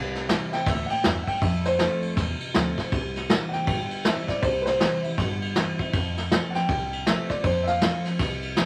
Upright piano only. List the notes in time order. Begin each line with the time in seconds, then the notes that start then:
0.53 G5
0.67 E5
0.86 F#5
0.91 G5
1.05 E5
1.23 F#5
1.28 G5
1.42 E5
1.66 C5
3.49 F#5
3.53 G5
4.05 E5
4.29 D5
4.42 C5
4.61 B4
4.66 C5
6.50 F#5
6.55 G5
7.06 E5
7.29 D5
7.44 C5
7.63 E5
7.67 F5